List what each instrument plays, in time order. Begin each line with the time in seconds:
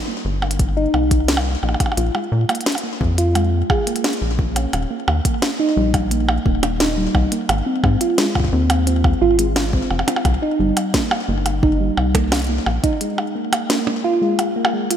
0.08 synth pluck A#3
0.25 analog synth bass G1
0.42 synth pluck A#3, percussion blips
0.51 closed hi-hat
0.59 kick, closed hi-hat
0.77 synth pluck D#4
0.94 analog synth bass C2, synth pluck G3, percussion blips
1.11 kick, closed hi-hat
1.28 synth pluck A#3, snare, closed hi-hat
1.37 percussion blips
1.63 analog synth bass A#1, synth pluck A#3, percussion blips
1.69 percussion blips
1.74 percussion blips
1.80 kick, closed hi-hat, percussion blips
1.86 percussion blips
1.92 percussion blips
1.97 analog synth bass A#1, synth pluck F4, closed hi-hat
2.15 synth pluck G#3, percussion blips
2.32 analog synth bass A#2
2.49 synth pluck A#3, closed hi-hat, percussion blips
2.55 closed hi-hat
2.61 closed hi-hat
2.66 snare, closed hi-hat
2.72 closed hi-hat, percussion blips
2.78 closed hi-hat
2.84 synth pluck A#3
3.01 analog synth bass F2, kick
3.18 synth pluck F4, closed hi-hat
3.35 synth pluck G#3, closed hi-hat, percussion blips
3.70 synth pluck G#4, kick, percussion blips
3.87 synth pluck A#3, closed hi-hat
3.96 closed hi-hat
4.04 synth pluck A#3, snare, closed hi-hat, percussion blips
4.13 closed hi-hat
4.22 analog synth bass A#1
4.39 synth pluck A#3, kick
4.56 synth pluck C#4, closed hi-hat, percussion blips
4.73 analog synth bass D#1, closed hi-hat, percussion blips
4.91 synth pluck A#3
5.08 analog synth bass D#2, percussion blips
5.25 synth pluck A#3, kick, closed hi-hat
5.42 snare, closed hi-hat, percussion blips
5.60 synth pluck D#4
5.77 analog synth bass A#1, synth pluck G3
5.94 kick, closed hi-hat, percussion blips
6.11 synth pluck A#3, closed hi-hat
6.29 percussion blips
6.46 analog synth bass D#1, synth pluck A#3, kick
6.63 closed hi-hat, percussion blips
6.80 synth pluck D#4, snare, closed hi-hat
6.97 synth pluck G3
7.15 analog synth bass C2, kick, percussion blips
7.32 synth pluck A#3, closed hi-hat
7.49 analog synth bass G#1, closed hi-hat, percussion blips
7.66 synth pluck C4
7.84 analog synth bass G#2, kick, percussion blips
8.01 synth pluck F4, closed hi-hat
8.18 synth pluck G#3, snare, closed hi-hat
8.35 kick, percussion blips
8.40 kick
8.44 kick
8.48 kick
8.53 analog synth bass D#2, synth pluck C4
8.70 closed hi-hat, percussion blips
8.87 synth pluck C4, closed hi-hat
9.04 kick, percussion blips
9.22 analog synth bass G#1, synth pluck F4
9.39 synth pluck G#3, closed hi-hat
9.56 snare, closed hi-hat, percussion blips
9.73 synth pluck C4, kick
9.91 analog synth bass F1, percussion blips
9.99 percussion blips
10.08 synth pluck C4, closed hi-hat, percussion blips
10.16 percussion blips
10.25 analog synth bass C2, kick, closed hi-hat, percussion blips
10.42 synth pluck D#4
10.60 analog synth bass G1, synth pluck G3
10.77 closed hi-hat, percussion blips
10.94 synth pluck A#3, kick, snare, closed hi-hat
11.11 percussion blips
11.28 analog synth bass G1, synth pluck A#3
11.46 closed hi-hat, percussion blips
11.63 synth pluck D#4, kick
11.80 synth pluck G3
11.97 analog synth bass C2, percussion blips
12.15 synth pluck A#3, kick, closed hi-hat, percussion blips
12.32 snare, closed hi-hat, percussion blips
12.34 closed hi-hat
12.39 closed hi-hat
12.42 closed hi-hat
12.44 closed hi-hat
12.47 synth pluck A#3, closed hi-hat
12.66 analog synth bass A#1, percussion blips
12.84 synth pluck D#4, kick, closed hi-hat
13.01 synth pluck G#3, closed hi-hat
13.18 percussion blips
13.35 synth pluck A#3
13.53 closed hi-hat, percussion blips
13.70 synth pluck A#3, snare, closed hi-hat
13.87 percussion blips
14.04 synth pluck F4
14.22 synth pluck G#3
14.39 closed hi-hat, percussion blips
14.56 synth pluck A#3
14.65 percussion blips
14.73 synth pluck G#3
14.91 synth pluck F4, closed hi-hat